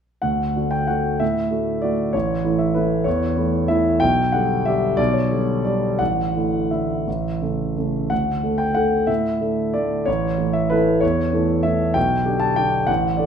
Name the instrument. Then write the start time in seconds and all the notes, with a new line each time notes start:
grand piano
0.22 D2 F#5
0.56 D3 A3 F#4
0.71 G5
0.87 D3 A3 F#4 F#5
1.20 A2 E5
1.51 D3 A3 F#4
1.82 D3 A3 F#4 D5
2.13 A1 C#5
2.44 E3 A3 E4
2.58 E5
2.75 E3 A3 E4 B4
3.04 E2 C#5
3.37 E3 A3 E4
3.68 E3 A3 E4 E5
4.00 B1 G5
4.32 D3 G3 G4 F#5
4.65 D3 G3 G4 E5
4.97 B1 D5
5.13 C#5
5.31 D3 G3 G4
5.65 D3 G3 G4 D5
5.99 A1 F#5
6.36 D3 A3 E4
6.71 D3 A3 E4 E5
7.08 A1
7.42 C#3 A3 A4
7.77 C#3 A3 A4
8.10 D2 F#5
8.43 D3 A3 A4
8.58 G5
8.75 D3 A3 A4 F#5
9.07 A2 E5
9.40 D3 A3 A4
9.74 D3 A3 A4 D5
10.06 A1 C#5
10.38 E3 A3 A4
10.53 E5
10.70 E3 A3 A4 B4
11.01 E2 C#5
11.33 E3 A3 A4
11.63 E3 A3 A4 E5
11.94 B1 G5
12.25 D3 D4 G4
12.40 A5
12.56 D3 D4 G4 G5
12.87 A1 F#5
13.17 D3 D4 A4 D5